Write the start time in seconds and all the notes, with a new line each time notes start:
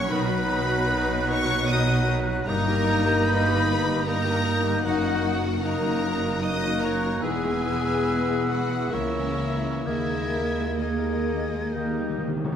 Already playing: A#2 F#3 F#4 C#5 F#5 C#6
0.08 B2 D#3 F#3 D#4 B4 B5 F#6
0.12 B1 D#4 B4
0.26 F#3 F#4
0.46 D#3 D#4 F#4
0.66 F#3 F#4 D#5
0.88 D#3 D#4 F#4
1.08 F#3 F#4
1.27 D#3 D#4 C#5 C#6 D#6
1.47 F#3 F#4 F#5
1.67 D#3 D#4 F#4 D#5 D#6
1.71 F#3 B4 F#6
1.87 F#3 F#4
2.07 D#3 D#4 F#4
2.26 F#3 F#4
2.46 G1 G2 G3 A#3 D#4 A#4 D#5 A#5 G6
2.66 D#3 A#3 G4
2.86 G3 D#4
3.05 D#3 G4 D#5
3.25 G3 D#4 A#4 B4 B5
3.46 D#3 G4
3.66 G3 D#4 D#6
3.86 D#3 G4 D#5
4.04 G3 A#3 D#4 A#4 A#5 G6
4.08 A#4 D#5
4.24 D#3 G4
4.28 D#5
4.43 G3 D#4
4.48 D#4
4.62 D#3 G4
4.67 A#3
4.83 F#1 F#2 F#3 A#3 D#4 F#5 F#6
4.88 F#4 D#5
5.03 D#3 A#3 F#4
5.24 F#3 D#4
5.44 D#3 F#4 D#5
5.62 F#3 A#3 D#4 A#4 D#5 A#5 F#6
5.83 D#3 F#4 D#5
6.03 F#3 D#4 D#6
6.23 D#3 F#4 D#5
6.42 F#3 A#3 D#4 A#4 D#5 D#6 F#6
6.65 D#3 F#4
6.81 F#3 D#4 A#4 C#5 A#5
7.03 D#3 A#3 F#4
7.21 E1 E2 G#3 B3 E4 G#4 B4 G#5 E6
7.44 E3 G#3
7.64 G#3 B3 E4
7.85 E3 G#3 B4
8.05 G#3 B3 G#4
8.27 E3 G#3 E5
8.48 G#3 B3 F#4 F#5 B5
8.71 E3 G#3 E5
8.89 C#2 C#3 E3 A#3 E4 A#4 E5 E6
8.94 C#5
9.15 E3 A#3 C#4
9.37 E3 A#3 E4
9.62 E3 C#4 A#4
9.85 D#2 D#3 A#3 E4 G#4 A#4 D#5 E5 G#6
10.10 G#3 A#3
10.34 A#3 G#4
10.57 G#3 A#4
10.79 A#3 D#4 G#4 A#4 D#5 G#6
10.84 D#5
11.04 G#3 G#5
11.28 A#3 A#5
11.51 G#3 G#5
11.73 D#3 A#3 G4 A#4 D#5 G6
11.83 D#3
11.91 D#3
11.98 D#3 G3 A#3 D#4
12.09 D#3
12.18 D#3
12.23 A#3 G4
12.28 D#3
12.37 D#3
12.45 D#3 G3 D#4
12.49 D#3 A#4